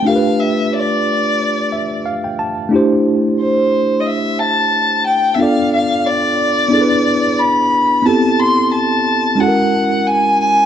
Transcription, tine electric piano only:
0.03 2.67 A3 medium
0.03 2.68 D4 soft
0.03 2.68 F4 medium
0.08 2.69 G4 medium
0.08 0.15 A#4 soft
0.16 2.73 B4 medium
1.72 2.03 E5 medium
2.06 2.23 F5 medium
2.24 2.38 G5 medium
2.39 2.70 A5 medium
2.69 5.33 A3 medium
2.69 5.34 D4 medium
2.69 5.35 E4 medium
2.74 5.36 G4 medium
2.74 5.36 C5 medium
5.36 6.67 B3 medium
5.36 6.69 D4 medium
5.36 6.70 F4 medium
5.41 6.70 A4 soft
5.41 6.71 D5 medium
6.68 8.01 B3 medium
6.68 8.02 D4 medium
6.68 8.02 E4 soft
6.74 8.03 G#4 medium
6.74 6.81 A4 soft
6.81 8.07 B4 medium
8.02 9.34 B3 medium
8.02 9.35 C4 medium
8.02 9.36 E4 medium
8.07 9.37 G4 medium
8.07 9.38 A4 medium
9.36 10.66 G#3 medium
9.36 10.66 C#4 medium
9.36 10.66 E4 soft
9.40 10.66 F#4 soft
9.40 9.47 A4 medium
9.48 10.66 A#4 medium

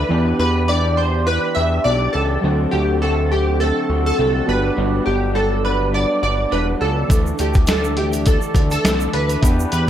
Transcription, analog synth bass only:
0.10 0.34 E2 loud
0.39 1.39 E2 medium
1.56 1.80 E2 medium
1.85 2.08 B1 medium
2.15 2.38 C#2 medium
2.44 2.67 D2 loud
2.73 3.72 D2 medium
3.89 4.13 D2 loud
4.19 4.42 C2 loud
4.48 4.71 G1 medium
4.78 5.01 G1 loud
5.07 6.06 G1 loud
6.23 6.46 G1 medium
6.52 6.75 E1 loud
6.81 7.04 C#2 medium
7.10 7.33 D2 loud
7.40 8.39 D2 loud
8.55 8.78 D2 medium
8.85 9.08 C2 loud
9.14 9.37 D2 medium
9.43 9.66 E2 loud
9.72 9.90 E2 loud

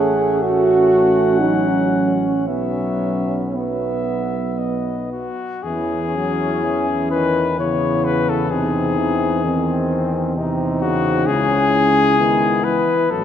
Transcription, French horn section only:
0.00 0.43 G#4 medium
0.42 1.41 F#4 medium
1.39 1.67 D#4 medium
1.68 2.46 C#4 medium
2.47 3.50 C#4 medium
3.54 5.12 B3 medium
5.65 7.56 E4 medium
7.59 8.49 E4 soft
8.51 9.45 D#4 medium
9.45 10.36 C4 medium
10.37 11.27 C4 medium
11.30 13.13 E4 medium
13.13 13.24 F#4 medium

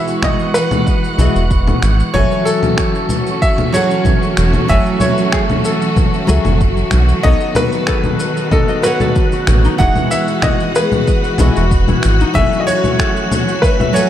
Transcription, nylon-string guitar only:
0.00 1.15 E3 medium
0.00 1.15 E4 medium
0.00 1.15 F#4 medium
0.00 1.16 G#4 medium
0.00 1.16 F#5 medium
1.18 1.42 E3 medium
1.18 1.42 E4 medium
1.18 1.42 F#4 medium
1.18 1.43 G#4 medium
1.18 1.43 D#5 medium
2.14 3.70 F#3 medium
2.14 3.70 F#4 medium
2.14 3.71 A4 medium
2.14 3.72 E5 medium
2.14 3.71 G#5 medium
3.72 4.65 F#3 medium
3.72 4.66 F#4 medium
3.72 4.66 G#4 medium
3.72 4.67 A4 medium
3.72 4.67 F#5 medium
4.68 6.25 F#3 medium
4.68 6.26 A3 medium
4.68 6.25 F#4 medium
4.68 6.27 E5 medium
4.68 6.26 G#5 medium
6.27 6.52 F#3 medium
6.27 6.52 F#4 medium
6.27 6.52 G#4 medium
6.27 6.52 A4 medium
6.27 6.53 E5 medium
7.23 8.80 B3 medium
7.23 8.80 F#4 medium
7.23 8.81 A4 medium
7.23 8.82 C#5 medium
7.23 8.82 D#5 medium
8.82 8.85 B3 medium
8.82 9.76 F#4 medium
8.82 9.76 A4 medium
8.82 9.77 C#5 medium
8.86 9.78 F#5 medium
9.78 11.35 E3 medium
9.78 11.36 F#4 medium
9.78 11.36 G#4 medium
9.78 11.37 F#5 medium
11.39 11.63 E3 medium
11.39 11.63 E4 medium
11.39 11.63 F#4 medium
11.39 11.64 G#4 medium
11.39 11.64 D#5 medium
12.34 13.91 F#3 medium
12.34 13.91 F#4 medium
12.34 13.92 A4 medium
12.34 13.91 G#5 medium
12.38 13.93 E5 medium
13.93 14.10 F#3 medium
13.93 14.10 F#4 medium
13.93 14.10 A4 medium
13.93 14.10 F#5 medium
13.93 14.10 G#5 medium

